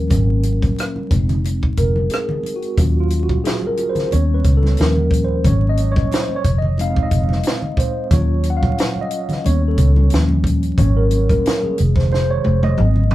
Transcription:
Already playing: D#2 F3 G3 C#4 A#4
0.10 G#1 F#3 A#3 C#4, kick, closed hi-hat, muted conga, low conga
0.43 closed hi-hat, muted conga
0.62 kick, closed hi-hat, high conga
0.78 cross-stick, closed hi-hat
0.96 high conga
1.11 F1 G#3 C4 D#4, kick, closed hi-hat, muted conga
1.29 closed hi-hat, low conga
1.44 closed hi-hat, muted conga
1.63 kick
1.77 F1 A#4, kick, closed hi-hat
1.96 high conga
2.10 G#4, closed hi-hat, muted conga
2.14 cross-stick
2.29 low conga
2.43 closed hi-hat, muted conga
2.56 F#4
2.62 closed hi-hat
2.77 D#2 F#3 C#4 F4, kick, closed hi-hat, low conga
3.00 F4
3.10 closed hi-hat, muted conga
3.23 F#4
3.29 kick, high conga
3.44 G#4, snare, closed hi-hat, muted conga
3.62 high conga
3.67 A#4
3.77 closed hi-hat, muted conga
3.89 C5
3.95 snare, closed hi-hat, low conga
4.11 D#2 G3 B3 C#4 C#5, closed hi-hat, muted conga
4.34 B4
4.44 C#2, kick, closed hi-hat, muted conga
4.57 A4
4.63 snare, high conga
4.77 D#2 F3 G3 C#4 A#4, closed hi-hat
4.81 snare
4.96 low conga
5.11 kick, closed hi-hat
5.25 C5
5.44 G#1 F#3 A#3 C#4 C#5, kick, closed hi-hat, low conga
5.69 D#5
5.77 closed hi-hat, muted conga
5.92 C#5
5.96 kick, high conga
6.12 C5, snare, closed hi-hat, muted conga
6.28 high conga
6.36 C#5
6.44 F1, kick, closed hi-hat, muted conga
6.58 D#5, low conga
6.78 G#3 C4 D#4 F5, closed hi-hat, muted conga
6.96 kick
7.03 D#5
7.11 F1, kick, closed hi-hat, muted conga
7.29 snare, high conga
7.43 closed hi-hat, muted conga
7.47 snare
7.62 low conga
7.77 C5, kick, closed hi-hat, muted conga
8.11 D#2 F#3 C#4 F4 C#5, kick, closed hi-hat, low conga
8.43 closed hi-hat
8.50 F#5
8.57 F5
8.63 kick, high conga
8.78 snare, closed hi-hat, muted conga
8.96 high conga
9.01 D#5
9.11 closed hi-hat
9.29 snare, closed hi-hat, low conga
9.44 D#2 G3 B3 C#4 C#5, closed hi-hat, muted conga
9.68 A4
9.78 C#2, kick, closed hi-hat
9.96 high conga
10.10 D#2 F3 G3 C#4, closed hi-hat
10.14 snare
10.29 low conga
10.44 kick, closed hi-hat, muted conga
10.63 closed hi-hat
10.78 G#1 F#3 A#3 C#4 C#5, kick, closed hi-hat, low conga
10.97 A#4
11.11 closed hi-hat, muted conga
11.29 A#4, kick, closed hi-hat, high conga
11.46 snare, closed hi-hat, muted conga
11.63 G#4, high conga
11.78 F1 C3 D#3 G#3, closed hi-hat
11.96 C5, kick, snare, low conga
12.12 C5, snare, muted conga
12.31 C#5
12.44 F1, high tom
12.63 D#5, high tom, high conga
12.78 G#1 F#3 A#3 C4, mid tom, muted conga
12.96 low conga
13.11 floor tom, muted conga

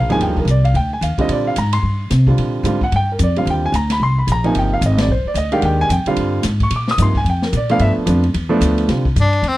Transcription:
Already playing: F5
0.00 A#1
0.09 G#1 G2 F3 A#3 D#4 G#4 G#5, ride
0.19 D#2 G5, ride
0.27 D2
0.37 A#1 A#4, kick
0.45 C2, hi-hat pedal, ride
0.50 D5
0.64 F5, ride
0.74 D2 G5, ride
0.93 G#5
1.01 D#2 F5, hi-hat pedal, ride
1.18 D3 G3 C4 F4 D#5, muted upright bass stroke, kick, ride
1.29 A#2 D5, ride
1.47 F5
1.56 G#2 A#5, hi-hat pedal, ride
1.73 C6, ride
1.83 G2
2.10 C3, snare, hi-hat pedal, ride
2.27 D3 G3 C4 F4, kick
2.38 A#2, ride
2.63 G#2 D3 G3 C4 F4, hi-hat pedal, ride
2.81 F#5, kick
2.92 G2, ride
2.96 G5
3.12 A#4
3.19 F2, hi-hat pedal, ride
3.23 D5
3.36 D3 G3 C4 F4 F5, ride
3.45 D#2, ride
3.50 G5
3.66 G#5
3.72 D2 A#5, hi-hat pedal, ride
3.90 B5, snare, ride
4.00 C2 C6
4.18 B5
4.27 A#1, hi-hat pedal, ride
4.32 A#5
4.44 C3 F3 A#3 D#4 G#5, ride
4.55 G1 G5, ride
4.73 F5
4.81 G#1, hi-hat pedal, ride
4.86 D#5
4.98 D5, snare, ride
5.09 A#1 C5
5.24 D5, muted upright bass stroke
5.34 D2 D#5, hi-hat pedal, ride
5.52 D#3 G#3 D4 G4 F5, ride
5.60 D#2 F#5, ride
5.65 G5
5.81 G#5
5.89 F2 G5, hi-hat pedal, ride
6.05 D3 G3 C4 F4 F5, muted upright bass stroke, ride
6.16 G2, ride
6.43 G#2, snare, hi-hat pedal, ride
6.60 C#6, kick, ride
6.71 A#2, ride
6.76 D6
6.88 D#6, snare
6.98 G2 C3 F3 A#3 D#4, hi-hat pedal, ride
7.02 C6
7.15 G#5, kick
7.24 F2, ride
7.30 G5
7.42 A#4, snare
7.52 A#2, hi-hat pedal, ride
7.57 D5
7.69 F3 A3 B3 D4 F5, ride
7.79 G2 E5, ride
7.97 muted upright bass stroke
8.06 F2 F3 A3 B3 D4, hi-hat pedal, ride
8.23 ride
8.34 E2, ride
8.49 F3 A3 B3 D4
8.61 D2, hi-hat pedal, ride
8.78 ride
8.88 C2 D3 G3 C4 F4, snare, ride
9.05 kick
9.16 G2, hi-hat pedal, ride
9.21 D4
9.33 ride
9.42 E2, ride
9.48 C4

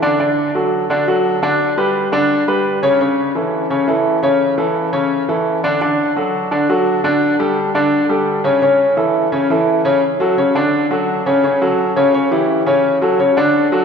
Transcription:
0.02 D3 D4 D5
0.19 D3 D4 D5
0.55 F#3 F#4 A4
0.90 D3 D4 D5
1.08 F#3 F#4 A4
1.42 D3 D4 D5
1.77 G3 G4 B4
2.12 D3 D4 D5
2.48 G3 G4 B4
2.82 C#3 C#4 C#5
3.01 C#3 C#4 C#5
3.35 E3 E4 A4
3.70 C#3 C#4 C#5
3.88 E3 E4 A4
4.23 C#3 C#4 C#5
4.58 E3 E4 A4
4.93 C#3 C#4 C#5
5.29 E3 E4 A4
5.64 D3 D4 D5
5.81 D3 D4 D5
6.16 F#3 F#4 A4
6.51 D3 D4 D5
6.69 F#3 F#4 A4
7.04 D3 D4 D5
7.39 G3 G4 A4
7.75 D3 D4 D5
8.09 G3 G4 A4
8.44 C#3 C#4 C#5
8.62 C#3 C#4 C#5
8.97 E3 E4 A4
9.32 C#3 C#4 C#5
9.50 E3 E4 A4
9.85 C#3 C#4 C#5
10.20 F#3 F#4 A4
10.38 C#3 C#4 C#5
10.55 D3 D4 D5
10.91 F#3 F#4 A4
11.26 C#3 C#4 C#5
11.44 C#3 C#4 C#5
11.62 F#3 F#4 A4
11.96 C#3 C#4 C#5
12.14 C#3 C#4 C#5
12.31 E3 E4 G4
12.66 C#3 C#4 C#5
13.01 F#3 F#4 A4
13.19 C#3 C#4 C#5
13.37 D3 D4 D5
13.72 F#3 F#4 A4

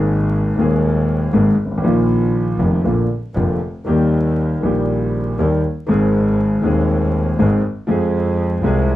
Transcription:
Already playing: G#1 G#2 D#3 G#3 A#3 G#4
0.57 D#1 D#2 D#3 G#3 A#3 G#4
1.33 G#1 G#2 D#3 G#3 A#3 G#4
1.59 G#1
1.65 G1
1.71 G#1
1.78 A1
1.82 A#1 A#2 D#3 F3 A#3
1.86 F4
2.59 F1 F2 D#3 F3 A#3 F4
2.84 A#1 A#2 D3 F3 A#3 F4
3.35 F1 F2 D3 F3 A#3 F4
3.85 D#2 D#3 G3 A#3
3.89 G4
4.61 A#1 A#2 D#3 G3 A#3
4.65 G4
5.38 D#2 D#3 G3 A#3 G4
5.87 G#1 G#2 D#3 G#3 C4
5.91 G#4
6.62 D#1 D#2 D#3 G#3 C4
6.66 G#4
7.39 G#1 G#2 D#3 G#3 C4 G#4
7.87 F2 F3 G#3 C4
7.91 G#4
8.62 C2 C3 F3 G#3 C4
8.66 G#4

